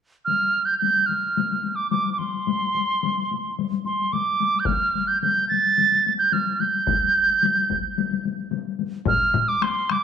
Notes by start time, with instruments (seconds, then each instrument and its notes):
0.25 piccolo F6, taiko high
0.42 taiko high
0.65 piccolo G6
0.69 taiko high
0.78 piccolo G6
0.83 taiko high
0.97 taiko high
1.06 piccolo F6, taiko high
1.24 taiko high
1.37 taiko high
1.51 taiko high
1.64 taiko high
1.75 piccolo D6, taiko high
1.91 piccolo D6, taiko high
2.06 taiko high
2.13 piccolo D6
2.18 piccolo C6, taiko high
2.34 taiko high
2.47 taiko high
2.62 taiko high
2.75 taiko high
2.89 taiko high
3.03 taiko high
3.17 taiko high
3.31 taiko high
3.45 taiko high
3.59 taiko high
3.72 taiko high
3.85 piccolo C6, taiko high
4.00 taiko high
4.13 piccolo D6, taiko high
4.27 taiko high
4.41 taiko high
4.55 taiko high
4.60 piccolo G6
4.65 piccolo F6, taiko, taiko high
4.82 taiko high
4.95 taiko high
5.08 piccolo G6, taiko high
5.22 piccolo G6, taiko high
5.37 taiko high
5.49 piccolo A6, taiko high
5.64 taiko high
5.78 taiko high
5.92 taiko high
6.07 taiko high
6.19 piccolo G6, taiko high
6.32 piccolo F6, taiko high
6.47 taiko high
6.60 piccolo G6, taiko high
6.74 taiko high
6.87 taiko, taiko high
7.03 taiko high
7.29 taiko high
7.43 taiko high
7.57 taiko high
7.70 taiko, taiko high
7.85 taiko high
7.98 taiko high
8.11 taiko high
8.25 taiko high
8.38 taiko high
8.52 taiko high
8.66 taiko high
8.79 taiko high
8.93 taiko high
9.06 piccolo F6, taiko, taiko low-mid, taiko high
9.34 taiko low-mid, taiko high
9.48 piccolo D6, taiko high
9.62 piccolo C6, taiko rim, taiko high
9.90 piccolo D6, taiko rim, taiko high